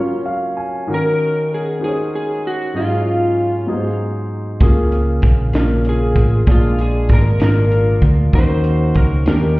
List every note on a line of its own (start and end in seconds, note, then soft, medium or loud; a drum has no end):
0.00 0.90 F#3 medium
0.00 0.25 A#3 soft
0.00 0.25 C#4 soft
0.00 0.87 C#4 medium
0.00 0.24 F4 medium
0.00 0.90 F4 medium
0.00 0.89 A#4 medium
0.00 0.60 C#5 medium
0.26 0.55 F5 medium
0.57 0.86 G#5 medium
0.87 1.77 D#3 medium
0.87 1.52 C#4 medium
0.87 1.52 D#4 medium
0.87 1.52 F#4 medium
0.87 1.53 A#4 medium
0.92 1.79 C#4 medium
0.92 1.79 F#4 medium
0.92 1.49 A#4 medium
0.92 1.54 A#4 medium
1.54 1.83 G#4 medium
1.80 2.45 C#4 medium
1.80 2.45 D#4 medium
1.80 2.45 F#4 soft
1.80 1.88 C5 soft
1.84 2.72 C#4 medium
1.84 1.92 G#4 medium
1.84 2.41 G#4 medium
1.84 2.49 C#5 medium
2.15 2.46 G#4 medium
2.46 2.76 F#4 medium
2.74 3.64 G#2 soft
2.74 3.39 F#3 medium
2.74 3.38 C#4 medium
2.74 3.96 C#4 medium
2.74 3.39 D#4 medium
2.74 3.96 F4 medium
2.74 4.00 F4 medium
2.74 3.39 G#4 medium
3.66 4.57 G#2 medium
3.66 4.32 F#3 medium
3.66 3.73 B3 soft
3.66 4.32 D#4 medium
3.66 4.32 G#4 medium
3.73 4.34 C5 medium
4.60 5.19 C#2 medium
4.60 5.51 C#3 medium
4.60 5.25 A#3 medium
4.60 5.25 C#4 medium
4.60 5.26 F4 medium
4.60 5.26 G#4 medium
4.60 kick medium
4.60 closed hi-hat medium
4.92 closed hi-hat soft
5.22 5.52 A#1 medium
5.22 kick medium
5.22 closed hi-hat soft
5.53 6.12 A#1 medium
5.53 6.18 A#3 medium
5.53 6.18 C#4 medium
5.53 6.19 F4 medium
5.53 6.19 A#4 medium
5.53 snare medium
5.53 closed hi-hat medium
5.85 6.45 F4 medium
5.85 6.45 G#4 medium
5.85 closed hi-hat soft
5.89 6.51 G#4 medium
6.16 6.44 A1 medium
6.16 kick medium
6.16 closed hi-hat medium
6.47 7.05 A#1 medium
6.47 7.37 A#2 medium
6.47 7.38 G#3 medium
6.47 7.11 A#3 medium
6.47 7.11 D4 medium
6.47 7.37 D4 medium
6.47 7.12 F4 medium
6.47 6.79 F4 medium
6.47 7.12 G#4 medium
6.47 kick medium
6.47 closed hi-hat medium
6.51 6.78 F4 medium
6.78 7.10 G#4 medium
6.78 7.12 G#4 medium
6.78 closed hi-hat soft
7.09 7.38 G#1 medium
7.09 7.39 A#4 medium
7.09 kick medium
7.09 snare soft
7.09 closed hi-hat medium
7.13 7.42 A#4 medium
7.40 7.98 G#1 medium
7.40 8.04 A#3 medium
7.40 8.05 D4 medium
7.40 8.31 D4 medium
7.40 8.05 F4 soft
7.40 8.05 A#4 medium
7.40 8.08 A#4 medium
7.40 snare loud
7.40 closed hi-hat medium
7.44 8.31 F4 medium
7.72 closed hi-hat soft
8.02 8.31 D2 medium
8.02 kick medium
8.02 closed hi-hat medium
8.33 8.92 D#2 medium
8.33 9.23 D#3 medium
8.33 8.97 A#3 medium
8.33 8.98 C#4 medium
8.33 8.98 D#4 medium
8.33 8.98 F#4 medium
8.33 9.24 F#4 medium
8.33 8.98 C5 medium
8.33 kick medium
8.33 closed hi-hat medium
8.37 8.94 C5 medium
8.64 closed hi-hat soft
8.95 9.24 C#2 medium
8.95 9.05 A#4 medium
8.95 9.28 A#4 medium
8.95 kick medium
8.95 closed hi-hat medium
9.26 9.60 D#2 medium
9.26 9.60 D#3 soft
9.26 9.60 A#3 medium
9.26 9.60 C#4 soft
9.26 9.60 C#4 medium
9.26 9.60 D#4 soft
9.26 9.60 G4 medium
9.26 9.60 A#4 medium
9.26 snare medium
9.26 closed hi-hat medium
9.30 9.60 A#4 medium